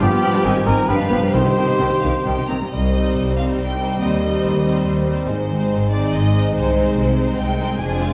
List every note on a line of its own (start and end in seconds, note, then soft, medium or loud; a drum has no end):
0.00 0.06 G1 medium
0.00 0.37 G2 medium
0.00 0.06 G2 medium
0.00 0.11 F3 soft
0.00 0.42 F3 medium
0.00 0.12 B3 medium
0.00 0.42 B3 medium
0.00 0.40 D4 soft
0.00 0.05 D4 medium
0.00 0.42 F4 soft
0.00 0.43 F4 medium
0.00 0.68 G4 medium
0.00 0.66 G4 medium
0.00 0.44 B4 soft
0.00 0.44 B5 medium
0.11 0.16 G2 medium
0.11 0.16 B3 soft
0.21 0.33 F3 medium
0.21 0.34 B3 medium
0.21 0.27 G5 medium
0.26 0.81 G#2 medium
0.30 0.38 G2 medium
0.30 0.84 C4 soft
0.30 0.38 D4 medium
0.35 0.86 D#4 medium
0.39 0.88 C5 soft
0.43 0.49 G#1 medium
0.43 0.49 G#2 medium
0.43 0.54 D#3 medium
0.43 0.90 D#3 medium
0.43 0.49 G#3 soft
0.43 0.55 C4 medium
0.43 0.90 C4 medium
0.43 0.89 D#4 medium
0.43 0.50 G#5 medium
0.43 0.89 G#5 medium
0.55 0.60 G#2 medium
0.55 0.60 D#3 soft
0.66 0.71 G#1 medium
0.66 0.71 G#2 medium
0.66 0.76 D#3 medium
0.66 0.71 C4 medium
0.66 0.77 C4 soft
0.66 0.89 A#4 medium
0.66 0.72 G#5 medium
0.70 1.27 G2 medium
0.75 1.29 D4 soft
0.79 1.31 F4 soft
0.84 1.28 G4 soft
0.88 0.94 G1 soft
0.88 0.92 G2 soft
0.88 0.99 F3 medium
0.88 1.34 F3 medium
0.88 0.93 G3 medium
0.88 0.99 D4 medium
0.88 1.34 D4 medium
0.88 2.48 G4 medium
0.88 1.33 B4 medium
0.88 1.34 B4 medium
0.88 1.34 F5 medium
0.88 0.94 G5 medium
0.99 1.04 G2 medium
0.99 1.03 D4 medium
1.10 1.16 G1 soft
1.10 1.15 G2 soft
1.10 1.22 F3 soft
1.10 1.15 B3 medium
1.10 1.22 D4 medium
1.10 1.17 G5 soft
1.16 2.65 C3 soft
1.21 1.27 G2 soft
1.21 1.27 G3 medium
1.21 3.15 C4 soft
1.25 3.37 D#4 soft
1.30 1.38 C3 medium
1.30 1.38 D#4 medium
1.30 3.59 G4 soft
1.30 2.47 C5 medium
1.30 1.76 G5 medium
1.34 1.40 C2 medium
1.34 2.00 C3 medium
1.34 1.44 D#3 soft
1.34 2.51 D#3 medium
1.34 1.45 C4 soft
1.34 2.50 D#4 medium
1.34 2.50 C5 medium
1.34 1.41 G5 soft
1.44 1.49 C3 soft
1.44 1.49 C4 soft
1.57 1.68 D#3 soft
1.57 1.69 C4 soft
1.57 1.64 G5 soft
1.66 1.71 C3 medium
1.66 1.72 D#4 medium
1.78 1.83 C3 soft
1.78 1.91 D#3 soft
1.78 1.84 C4 soft
1.78 1.92 C4 soft
1.78 2.01 G5 medium
1.82 1.86 C2 soft
1.82 1.88 G5 soft
1.89 1.94 C3 soft
1.89 1.96 G3 soft
2.02 2.09 C2 medium
2.02 2.07 C3 medium
2.02 2.14 D#3 soft
2.02 2.15 C4 soft
2.02 2.08 D#4 medium
2.02 2.26 F5 medium
2.02 2.11 G5 soft
2.25 2.33 C2 soft
2.25 2.30 C3 soft
2.25 2.37 D#3 soft
2.25 2.31 G3 soft
2.25 2.39 C4 soft
2.25 2.49 G5 medium
2.25 2.33 G5 soft
2.37 2.42 C3 medium
2.37 2.42 D#4 soft
2.48 2.56 C2 soft
2.48 2.54 C3 soft
2.48 2.60 D#3 soft
2.48 2.54 C4 soft
2.48 2.56 G5 soft
2.48 2.72 A#5 medium
2.52 2.62 C4 soft
2.60 2.65 C3 soft
2.60 2.65 G3 soft
2.70 3.11 C2 medium
2.70 3.12 C2 medium
2.70 4.04 C3 soft
2.70 5.30 G3 soft
2.70 5.26 G3 soft
2.70 5.26 C4 soft
2.70 3.33 D#5 medium
2.70 triangle soft
2.93 3.35 G3 soft
2.93 5.32 G3 soft
2.93 3.35 C4 soft
2.93 3.36 D#4 soft
2.93 3.35 C5 soft
3.16 3.54 C2 soft
3.16 3.54 C2 medium
3.16 4.23 C4 soft
3.36 3.78 G3 soft
3.36 3.79 C4 soft
3.36 3.79 D#4 soft
3.36 3.81 D#4 soft
3.36 3.79 C5 soft
3.36 3.45 F5 medium
3.58 3.96 C2 soft
3.58 3.97 C2 soft
3.58 4.65 G4 soft
3.58 4.01 G5 medium
3.80 3.99 G3 soft
3.80 3.99 C4 soft
3.80 4.01 D#4 soft
3.80 4.44 D#4 soft
3.80 4.02 C5 soft
4.00 4.39 D#2 medium
4.00 5.31 D#3 soft
4.00 4.21 G3 soft
4.00 4.21 C4 soft
4.00 4.23 D#4 soft
4.00 4.23 C5 soft
4.00 5.08 D#5 medium
4.22 4.64 G3 soft
4.22 4.64 C4 soft
4.22 5.70 C4 soft
4.22 4.64 D#4 soft
4.22 4.64 C5 soft
4.43 4.81 D#2 soft
4.43 4.82 D#2 soft
4.43 5.92 D#4 soft
4.65 5.06 G3 soft
4.65 5.06 C4 soft
4.65 5.07 D#4 soft
4.65 5.06 G4 soft
4.65 5.07 C5 soft
4.86 5.24 D#2 medium
4.86 5.24 D#2 soft
4.86 8.13 C5 soft
5.07 5.28 G3 soft
5.07 5.29 C4 soft
5.07 5.29 D#4 soft
5.07 5.31 G4 soft
5.07 5.29 C5 soft
5.28 5.67 G#1 medium
5.28 6.57 G#2 soft
5.28 5.67 G#2 medium
5.28 7.82 G#3 soft
5.28 7.78 G#3 soft
5.28 7.78 D#4 soft
5.28 7.84 D#4 soft
5.28 5.88 C5 medium
5.50 6.58 D#3 soft
5.50 5.91 G#3 soft
5.50 5.91 C4 soft
5.50 5.91 D#4 soft
5.50 5.90 C5 soft
5.71 6.09 G#1 soft
5.71 6.09 G#2 soft
5.71 6.97 C4 soft
5.92 6.34 G#3 soft
5.92 6.34 C4 soft
5.92 6.33 D#4 soft
5.92 6.34 D#4 soft
5.92 6.33 C5 soft
5.92 6.14 D5 medium
6.13 6.51 G#1 soft
6.13 6.51 G#2 medium
6.13 7.39 G#4 soft
6.13 6.56 D#5 medium
6.34 6.55 G#3 soft
6.34 6.55 C4 soft
6.34 6.53 D#4 soft
6.34 7.19 D#4 soft
6.34 6.53 C5 soft
6.55 6.93 C2 medium
6.55 6.93 C3 medium
6.55 7.84 C3 soft
6.55 6.75 G#3 soft
6.55 6.75 C4 soft
6.55 6.75 D#4 soft
6.55 6.76 C5 soft
6.55 7.38 C5 medium
6.76 7.18 G#3 soft
6.76 8.13 G#3 soft
6.76 7.18 C4 soft
6.76 7.17 D#4 soft
6.76 7.18 C5 soft
6.98 7.35 C2 soft
6.98 7.35 C3 medium
6.98 8.13 C4 soft
7.18 7.59 G#3 soft
7.18 7.60 C4 soft
7.18 7.58 D#4 soft
7.18 7.61 D#4 soft
7.18 7.59 C5 soft
7.38 7.77 C2 soft
7.38 7.77 C3 soft
7.38 8.13 G#4 soft
7.38 7.81 G5 medium
7.60 7.81 G#3 soft
7.60 7.82 C4 soft
7.60 7.81 D#4 soft
7.60 7.84 D#4 soft
7.60 7.80 C5 soft
7.81 8.13 F1 medium
7.81 8.13 F2 medium
7.81 8.13 F2 soft
7.81 8.01 F3 soft
7.81 8.13 G#3 soft
7.81 8.13 C4 medium
7.81 8.01 D4 soft
7.81 8.13 D4 soft
7.81 8.01 G#4 soft
7.81 8.01 C5 soft
7.81 8.13 G#5 medium
8.02 8.13 C3 soft
8.02 8.13 G#3 soft
8.02 8.13 C4 soft
8.02 8.13 F4 soft
8.02 8.13 D5 soft